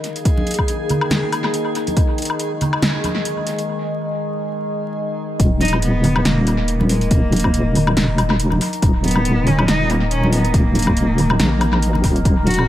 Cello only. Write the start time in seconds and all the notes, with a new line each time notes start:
5.61 D#4
5.82 B3
6.25 A#3
6.89 G#3
7.10 A#3
9.04 B3
9.47 C#4
9.69 D#4
9.90 A#3
10.11 C#4
10.33 B3
10.54 A#3
11.40 A#3
12.47 F#4